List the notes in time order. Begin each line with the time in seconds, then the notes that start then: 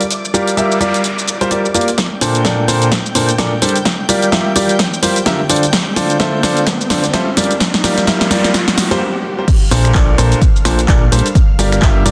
Already playing: D5 D6
0.01 closed hi-hat, shaker
0.10 closed hi-hat, noise sweep, shaker
0.25 shaker
0.34 G3 F4 G4 A#4 D5, shaker
0.47 closed hi-hat, shaker
0.57 G3 F4 G4 A#4 E5, closed hi-hat, shaker
0.72 shaker
0.81 G3 F4 G4 A#4 D5, closed hi-hat, shaker
0.94 closed hi-hat, shaker
1.04 closed hi-hat, shaker
1.19 shaker
1.28 closed hi-hat, shaker
1.41 G3 F4 G4 A#4 C5, closed hi-hat, shaker
1.51 G3 F4 G4 A#4 D5, closed hi-hat, shaker
1.65 shaker
1.74 A#3 F4 G4 A#4 D5, closed hi-hat, shaker
1.81 closed hi-hat
1.88 closed hi-hat, shaker
1.98 G5 G6, kick, snare, closed hi-hat, riser, shaker
2.21 A#2 D4 A4 A#4 C5, open hi-hat, shaker
2.35 closed hi-hat, shaker
2.45 A#2 D4 A4 A#4 D5, kick, snare, shaker
2.68 A#2 D4 A4 A#4 C5, open hi-hat, shaker
2.82 closed hi-hat, shaker
2.92 kick, snare, closed hi-hat, shaker
3.06 shaker
3.15 A#2 D4 A4 A#4 C5, open hi-hat, shaker
3.29 closed hi-hat, shaker
3.38 A#2 D4 A4 A#4 D5, kick, snare, closed hi-hat, shaker
3.62 G3 D4 A4 A#4 C5, open hi-hat, shaker
3.69 closed hi-hat
3.76 closed hi-hat, shaker
3.85 kick, snare, closed hi-hat, shaker
4.09 G3 F4 G4 A#4 D5, open hi-hat, shaker
4.22 closed hi-hat, shaker
4.32 G3 F4 G4 A#4 E5, kick, snare, shaker
4.56 G3 F4 G4 A#4 D5, open hi-hat, shaker
4.69 closed hi-hat, shaker
4.79 kick, snare, closed hi-hat, shaker
4.94 shaker
5.02 G3 F4 G4 A#4 C5, open hi-hat, shaker
5.16 closed hi-hat, shaker
5.26 D3 F4 G4 A#4 E5, kick, snare, closed hi-hat, shaker
5.49 D3 F4 A4 C5 D5, open hi-hat, shaker
5.56 closed hi-hat
5.63 closed hi-hat, shaker
5.73 kick, snare, closed hi-hat, shaker
5.96 D3 F4 A4 C5 D5, snare, open hi-hat, shaker
6.10 closed hi-hat, shaker
6.20 D3 F4 A4 C5 E5, kick, snare, shaker
6.43 D3 F4 A4 C5 D5, snare, open hi-hat, shaker
6.57 closed hi-hat, shaker
6.67 kick, snare, closed hi-hat, shaker
6.81 shaker
6.90 D3 F4 A4 C5 D5, snare, open hi-hat, shaker
7.04 closed hi-hat, shaker
7.13 G3 F4 A4 C5 E5, kick, snare, closed hi-hat, shaker
7.37 G3 F4 G4 A#4 D5, snare, open hi-hat, shaker
7.44 closed hi-hat
7.51 closed hi-hat, shaker
7.60 kick, snare, closed hi-hat, noise sweep, shaker
7.74 snare
7.84 G3 F4 G4 A#4 D5, snare, open hi-hat, shaker
7.98 snare, closed hi-hat, shaker
8.07 G3 F4 G4 A#4 E5, kick, snare, shaker
8.21 snare
8.30 G3 F4 G4 A#4 D5, snare, open hi-hat, shaker
8.44 snare, closed hi-hat, shaker
8.54 kick, snare, closed hi-hat, shaker
8.68 snare, shaker
8.78 snare, open hi-hat, shaker
8.91 G3 F4 G4 A#4 C5, snare, closed hi-hat, shaker
9.48 F5 F6, kick, closed hi-hat, crash, shaker
9.71 A#1 A#2 D4 A4 A#4 C5, open hi-hat, shaker
9.85 finger snap, closed hi-hat, shaker
9.95 A#1 A#2 D4, kick, clap, shaker
10.18 A#1 A#2 D4 A4 A#4 C5, open hi-hat, shaker
10.32 closed hi-hat, shaker
10.42 kick, closed hi-hat, shaker
10.56 shaker
10.65 A#1 A#2 D4 A4 A#4 C5, finger snap, open hi-hat, shaker
10.79 closed hi-hat, shaker
10.88 A#1 A#2 D4 A4 A#4 D5, kick, clap, closed hi-hat, shaker
11.12 A#1 G3 D4 A4 A#4 C5, open hi-hat, shaker
11.19 closed hi-hat
11.26 closed hi-hat, shaker
11.35 kick, closed hi-hat, shaker
11.59 G1 G3 F4 G4 A#4 D5, open hi-hat, shaker
11.72 finger snap, closed hi-hat, shaker
11.82 G3 F4 G4 A#4 E5, kick, clap, shaker
12.05 G1 G3 F4 G4 A#4 D5, open hi-hat, shaker